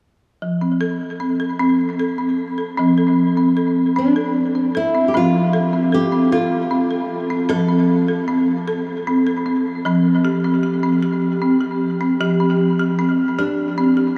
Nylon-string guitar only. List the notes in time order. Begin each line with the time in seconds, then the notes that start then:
3.98 D4
4.77 E4
5.08 G4
5.17 F4
5.94 G4
6.32 F4
7.49 A4
13.39 D4